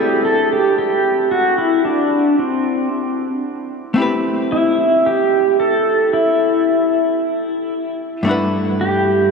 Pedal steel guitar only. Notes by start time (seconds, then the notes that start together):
Already playing: G4
0.25 A4
0.53 G4
0.78 G4
1.31 F#4
1.58 E4
1.85 D4
2.39 C4
4.52 E4
5.06 G4
5.60 A4
6.13 E4
8.81 G4